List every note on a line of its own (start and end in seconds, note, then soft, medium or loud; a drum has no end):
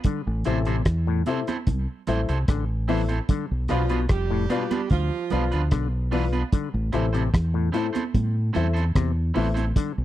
0.04 0.21 D3 medium
0.04 kick loud
0.04 closed hi-hat loud
0.04 low conga medium
0.27 0.44 A1 loud
0.44 0.82 A1 loud
0.44 0.62 C3 medium
0.44 0.57 C4 medium
0.44 0.68 E4 medium
0.44 0.57 E4 medium
0.44 0.68 A4 medium
0.44 0.58 A4 medium
0.44 0.68 C5 medium
0.44 0.58 C5 medium
0.44 0.69 E5 loud
0.44 closed hi-hat medium
0.65 0.82 C3 medium
0.65 0.76 C4 medium
0.65 0.76 E4 medium
0.65 0.75 A4 medium
0.65 0.75 C5 medium
0.65 closed hi-hat medium
0.85 1.21 E2 loud
0.85 kick loud
0.85 cross-stick loud
0.85 closed hi-hat medium
1.07 1.22 A2 medium
1.26 1.43 C3 medium
1.26 1.38 C4 medium
1.26 1.49 E4 medium
1.26 1.39 E4 medium
1.26 1.49 A4 medium
1.26 1.39 A4 medium
1.26 1.50 C5 medium
1.26 1.39 C5 medium
1.26 1.50 E5 loud
1.26 closed hi-hat medium
1.26 high conga medium
1.47 1.57 C4 medium
1.47 1.57 E4 medium
1.47 1.56 A4 medium
1.47 1.56 C5 medium
1.47 cross-stick medium
1.47 closed hi-hat soft
1.47 high conga medium
1.67 1.86 C2 loud
1.67 kick loud
1.67 closed hi-hat medium
1.67 high conga medium
1.67 low conga medium
2.07 2.26 A1 medium
2.07 2.19 C4 medium
2.07 2.30 E4 medium
2.07 2.19 E4 medium
2.07 2.19 A4 medium
2.07 2.30 A4 medium
2.07 2.30 C5 medium
2.07 2.20 C5 loud
2.07 2.31 E5 loud
2.07 closed hi-hat medium
2.07 low conga medium
2.29 2.46 C2 loud
2.29 2.38 C4 medium
2.29 2.37 E4 medium
2.29 2.37 A4 medium
2.29 2.37 C5 medium
2.29 closed hi-hat medium
2.48 3.19 A1 medium
2.48 2.64 D3 medium
2.48 kick loud
2.48 cross-stick loud
2.48 closed hi-hat loud
2.88 3.05 E3 medium
2.88 3.00 C4 medium
2.88 3.11 E4 medium
2.88 3.00 E4 medium
2.88 3.11 A4 medium
2.88 3.00 A4 medium
2.88 3.08 C5 medium
2.88 3.01 C5 medium
2.88 3.08 E5 loud
2.88 open hi-hat medium
2.88 high conga medium
3.09 3.18 C4 soft
3.09 3.18 E4 medium
3.09 3.18 A4 medium
3.09 3.18 C5 medium
3.09 3.17 C5 soft
3.09 3.17 E5 soft
3.09 closed hi-hat medium
3.09 high conga medium
3.29 3.45 D3 medium
3.29 kick loud
3.29 closed hi-hat loud
3.29 low conga medium
3.51 3.68 B1 medium
3.68 4.06 B1 medium
3.68 3.86 B2 medium
3.68 4.02 F3 medium
3.68 3.81 B3 medium
3.68 3.81 D4 medium
3.68 4.02 F4 loud
3.68 3.92 F4 medium
3.68 3.81 F4 medium
3.68 3.92 B4 medium
3.68 3.82 B4 medium
3.68 3.92 D5 medium
3.68 3.92 F5 loud
3.68 cross-stick medium
3.68 closed hi-hat medium
3.89 4.05 B2 medium
3.89 3.99 B3 medium
3.89 3.99 D4 medium
3.89 3.99 F4 medium
3.89 3.98 B4 medium
3.89 closed hi-hat medium
4.09 4.45 F1 medium
4.09 4.87 G3 medium
4.09 4.87 G4 loud
4.09 kick loud
4.09 cross-stick loud
4.09 closed hi-hat medium
4.31 4.46 A2 medium
4.49 4.66 B2 medium
4.49 4.62 B3 medium
4.49 4.62 D4 loud
4.49 4.73 F4 loud
4.49 4.62 F4 loud
4.49 4.73 B4 medium
4.49 4.62 B4 medium
4.49 4.73 D5 medium
4.49 4.73 F5 loud
4.49 closed hi-hat medium
4.49 high conga medium
4.71 4.80 B3 medium
4.71 4.80 D4 medium
4.71 4.80 F4 medium
4.71 4.80 B4 medium
4.71 cross-stick medium
4.71 closed hi-hat medium
4.71 high conga medium
4.90 5.09 D2 loud
4.90 5.68 F3 loud
4.90 5.67 F4 loud
4.90 kick loud
4.90 closed hi-hat medium
4.90 high conga medium
4.90 low conga medium
5.30 5.50 B1 medium
5.30 5.43 B3 medium
5.30 5.43 D4 medium
5.30 5.54 F4 medium
5.30 5.43 F4 medium
5.30 5.54 B4 medium
5.30 5.43 B4 medium
5.30 5.54 D5 medium
5.30 5.54 F5 loud
5.30 closed hi-hat medium
5.30 low conga medium
5.52 5.70 D2 medium
5.52 5.61 B3 medium
5.52 5.61 D4 medium
5.52 5.61 F4 medium
5.52 5.60 B4 medium
5.52 closed hi-hat soft
5.71 6.42 B1 loud
5.71 5.88 D3 medium
5.71 kick loud
5.71 cross-stick loud
5.71 closed hi-hat loud
6.11 6.28 E3 medium
6.11 6.23 B3 medium
6.11 6.24 D4 medium
6.11 6.35 F4 loud
6.11 6.24 F4 medium
6.11 6.24 B4 loud
6.11 6.35 B4 loud
6.11 6.32 D5 medium
6.11 6.32 F5 loud
6.11 open hi-hat medium
6.11 high conga medium
6.33 6.42 B3 medium
6.33 6.42 D4 medium
6.33 6.42 F4 medium
6.33 6.41 B4 medium
6.33 6.41 D5 soft
6.33 6.41 F5 soft
6.33 closed hi-hat medium
6.33 high conga soft
6.52 6.69 D3 medium
6.52 kick loud
6.52 closed hi-hat loud
6.52 low conga medium
6.74 6.91 A1 loud
6.92 7.29 A1 medium
6.92 7.09 C3 medium
6.92 7.04 C4 medium
6.92 7.04 E4 medium
6.92 7.16 E4 medium
6.92 7.05 A4 medium
6.92 7.16 A4 medium
6.92 7.05 C5 medium
6.92 7.16 C5 medium
6.92 7.16 E5 loud
6.92 closed hi-hat medium
7.13 7.29 C3 medium
7.13 7.23 C4 medium
7.13 7.23 E4 medium
7.13 7.22 A4 medium
7.13 7.22 C5 medium
7.13 closed hi-hat medium
7.34 7.69 E2 medium
7.34 kick loud
7.34 cross-stick loud
7.34 closed hi-hat medium
7.54 7.69 A2 medium
7.72 7.90 A2 medium
7.72 7.85 C4 medium
7.72 7.85 E4 medium
7.72 7.97 E4 loud
7.72 7.86 A4 medium
7.72 7.97 A4 medium
7.72 7.86 C5 loud
7.72 7.97 C5 medium
7.72 7.97 E5 loud
7.72 closed hi-hat medium
7.72 high conga medium
7.93 8.03 C4 medium
7.93 8.03 E4 medium
7.93 8.03 A4 medium
7.93 8.02 C5 medium
7.93 cross-stick medium
7.93 closed hi-hat soft
7.93 high conga medium
8.14 8.50 A2 loud
8.14 kick loud
8.14 closed hi-hat medium
8.14 high conga medium
8.14 low conga medium
8.53 8.91 E2 medium
8.53 8.65 C4 medium
8.53 8.66 E4 medium
8.53 8.77 E4 medium
8.53 8.66 A4 medium
8.53 8.78 A4 medium
8.53 8.66 C5 medium
8.53 8.78 C5 medium
8.53 8.78 E5 loud
8.53 closed hi-hat medium
8.53 low conga medium
8.73 8.84 C4 medium
8.73 8.84 E4 medium
8.73 8.83 A4 medium
8.73 8.83 C5 medium
8.73 closed hi-hat soft
8.95 9.31 E2 medium
8.95 9.12 C3 medium
8.95 kick loud
8.95 cross-stick loud
8.95 closed hi-hat loud
9.34 9.71 A1 loud
9.34 9.51 E3 medium
9.34 9.46 C4 medium
9.34 9.47 E4 medium
9.34 9.58 E4 loud
9.34 9.47 A4 medium
9.34 9.58 A4 medium
9.34 9.47 C5 medium
9.34 9.56 C5 medium
9.34 9.56 E5 loud
9.34 open hi-hat medium
9.34 high conga medium
9.54 9.64 C4 medium
9.54 9.64 E4 medium
9.54 9.64 A4 medium
9.54 9.64 C5 medium
9.54 9.65 C5 soft
9.54 9.65 E5 soft
9.54 closed hi-hat medium
9.54 high conga medium
9.76 9.92 D3 medium
9.76 kick loud
9.76 closed hi-hat loud
9.76 low conga medium
9.98 10.05 B1 medium